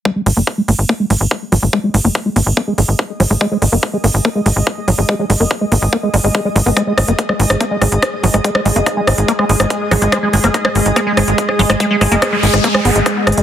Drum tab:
HH |----o-------o-------o-------o---|----o-------o-------o-------o---|----o-------o-------o-------o---|----o-------o-------o-------o---|
SD |--------------------------------|--------------------------------|--------------------------------|--------------------------------|
BD |o-------o-------o-------o-------|o-------o-------o-------o-------|o-------o-------o-------o-------|o-------o-------o-------o-------|

HH |x---o-x-x---o-x-x---o-x-x---o-x-|x---o-x-x---o-x-x---o-x-x---o-x-|x---o-x-x---o-x-x---o-x-x---o-x-|x---o-x-x---o-x-x---o-x-x---xxx-|
SD |r---r-----r---r-----r---r-----r-|--r-----r---r-----r---r-----r---|r-----r---r-----r---r-----r---r-|----r---r-----r---r-----r---r---|
BD |o-------o-------o-------o-------|o-------o-------o-------o-------|o-------o-------o-------o-------|o-------o-------o-------o-------|